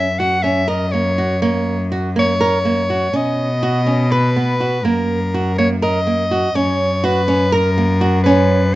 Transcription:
Already playing: cello F#2, soprano saxophone E5
0.18 nylon-string guitar F#4, soprano saxophone F#5
0.42 nylon-string guitar C#4, soprano saxophone E5
0.68 nylon-string guitar A#4, soprano saxophone D#5
0.91 nylon-string guitar A#3, soprano saxophone C#5
1.18 nylon-string guitar F#4
1.42 nylon-string guitar A#3, soprano saxophone C#5
1.92 nylon-string guitar F#4
2.16 nylon-string guitar A#3, soprano saxophone C#5
2.41 nylon-string guitar A#4
2.65 nylon-string guitar A#3
2.90 nylon-string guitar F#4
3.13 cello B2, nylon-string guitar C#4, soprano saxophone D#5
3.63 nylon-string guitar F#4
3.86 nylon-string guitar C#4
4.11 soprano saxophone B4, nylon-string guitar B4
4.36 nylon-string guitar B3
4.60 nylon-string guitar F#4
4.84 cello F#2, nylon-string guitar A#3, soprano saxophone A#4
5.34 nylon-string guitar F#4
5.58 nylon-string guitar A#3, soprano saxophone C#5
5.82 nylon-string guitar A#4, soprano saxophone D#5
6.07 nylon-string guitar A#3
6.31 nylon-string guitar F#4
6.55 cello F#2, nylon-string guitar C#4, soprano saxophone C#5
7.04 nylon-string guitar F#4, soprano saxophone B4
7.28 nylon-string guitar C#4
7.52 nylon-string guitar A#4, soprano saxophone A#4
7.78 nylon-string guitar A#3
8.01 nylon-string guitar F#4
8.23 nylon-string guitar C#4, soprano saxophone B4

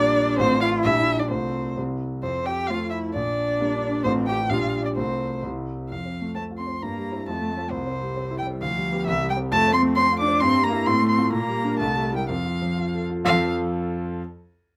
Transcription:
Already playing: grand piano A#1 G3 A#3 D4, cello D4, violin D5
0.38 grand piano A1 A3 C4 F4, cello C4, violin C5
0.61 cello F4, violin F5
0.83 grand piano A#1 G3 D4 G4, cello E4, violin E5
1.19 cello D4, violin D5
1.30 grand piano C2 A3 C4 F4, cello C4, violin C5
1.77 grand piano C2 G3 C4 E4
2.23 grand piano F2, cello C4, violin C5
2.45 cello G4, violin G5
2.67 grand piano A3 C4 F4, cello F4, violin F5
2.90 cello E4, violin E5
3.13 grand piano A#1, cello D4, violin D5
3.59 grand piano G3 A#3 D4
4.04 grand piano A1 A3 C4 F4, cello C4, violin C5
4.27 cello G4, violin G5
4.50 grand piano A#1 G3 D4 G4, cello F4, violin F5
4.82 cello D4, violin D5
4.96 grand piano C2 A3 C4 F4, cello C4, violin C5
5.43 grand piano C2 G3 C4 E4
5.89 grand piano F2, cello F3, violin F5
6.05 grand piano C4
6.21 grand piano A3
6.35 cello A3, grand piano C4, violin A5
6.51 grand piano F4
6.58 cello C4, violin C6
6.67 grand piano C4
6.82 grand piano G2, cello A#3, violin A#5
6.98 grand piano G3
7.12 grand piano C4 E4
7.28 grand piano F2, cello A3, violin A5
7.42 grand piano A3
7.57 grand piano C4 F4
7.71 grand piano C2, cello C3, violin C5
7.87 grand piano C4
8.02 grand piano G3
8.17 grand piano C4
8.31 grand piano E4
8.38 cello G3, violin G5
8.47 grand piano C4
8.61 grand piano D2, cello F3, violin F5
8.77 grand piano G3
8.92 grand piano B3 G4
9.06 grand piano C2, cello E3, violin E5
9.22 grand piano G3
9.30 cello G3, violin G5
9.36 grand piano C4 G4
9.52 grand piano F2, cello A3, violin A5
9.67 grand piano C4
9.73 cello C4, violin C6
9.82 grand piano A3
9.95 grand piano C4, cello C4, violin C6
10.12 grand piano F4
10.19 cello D4, violin D6
10.28 grand piano C4
10.40 grand piano G2, cello C4, violin C6
10.57 grand piano G3
10.64 cello A#3, violin A#5
10.71 grand piano A#3 E4
10.86 grand piano A2, cello C4, violin C6
11.03 grand piano A3
11.09 cello C4, violin C6
11.18 grand piano A3 F4
11.33 grand piano A#2, cello A#3, violin A#5
11.48 grand piano G3
11.64 grand piano D4 A#4
11.79 grand piano C2, cello A3, violin A5
11.95 grand piano G3
12.12 cello G3, grand piano E4 A#4
12.16 violin G5
12.28 grand piano F2, cello F3, violin F5
12.45 grand piano F4
12.62 grand piano F3
12.78 grand piano F4
12.94 grand piano A4
13.10 grand piano F4
13.25 grand piano F2 F3 F4 A4 F5, cello F3, violin F5

